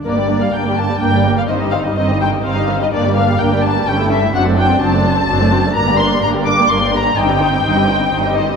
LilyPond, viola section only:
\new Staff \with { instrumentName = "Viola section" } { \time 3/4 \key g \minor \tempo 4 = 126 <bes d'>16 <g bes>16 <bes d'>16 <g bes>16 <bes d'>16 <g bes>16 <bes d'>16 <g bes>16 <bes d'>16 <g bes>16 <bes d'>16 <g bes>16 | <ees c'>16 <g ees'>16 <ees c'>16 <g ees'>16 <ees c'>16 <g ees'>16 <ees c'>16 <g ees'>16 <ees c'>16 <g ees'>16 <ees c'>16 <g ees'>16 | <bes d'>16 <g bes>16 <bes d'>16 <g bes>16 <bes d'>16 <g bes>16 <bes d'>16 <g bes>16 <g cis'>16 <a e'>16 <g cis'>16 <a e'>16 | <fis d'>16 <a c'>16 <fis d'>16 <a c'>16 <fis d'>16 <a c'>16 <fis d'>16 <a c'>16 <fis d'>16 <a c'>16 <fis d'>16 <a c'>16 |
<bes d'>16 <g bes>16 <bes d'>16 <g bes>16 <bes d'>16 <g bes>16 <bes d'>16 <g bes>16 <bes d'>16 <g bes>16 <bes d'>16 <g bes>16 | <ees ees'>16 <g c'>16 <ees ees'>16 <g c'>16 <ees ees'>16 <g c'>16 <ees ees'>16 <g c'>16 <ees ees'>16 <g c'>16 <ees ees'>16 <g c'>16 | }